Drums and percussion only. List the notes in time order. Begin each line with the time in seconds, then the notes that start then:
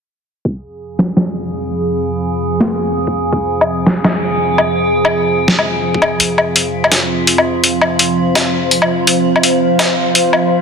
0.45 kick
0.99 kick, snare
1.17 snare
2.60 snare
3.07 kick
3.33 kick
3.61 low woodblock
3.86 kick, snare
4.04 snare, low woodblock
4.58 low woodblock
5.05 low woodblock
5.48 snare
5.59 low woodblock
5.94 kick
6.02 low woodblock
6.20 closed hi-hat
6.38 low woodblock
6.56 closed hi-hat
6.84 low woodblock
6.92 snare, closed hi-hat
7.27 closed hi-hat
7.38 low woodblock
7.64 closed hi-hat
7.82 low woodblock
7.99 closed hi-hat
8.35 snare, closed hi-hat, low woodblock
8.71 closed hi-hat
8.82 low woodblock
9.07 closed hi-hat
9.36 low woodblock
9.43 closed hi-hat
9.79 snare, closed hi-hat, low woodblock
10.15 closed hi-hat
10.33 low woodblock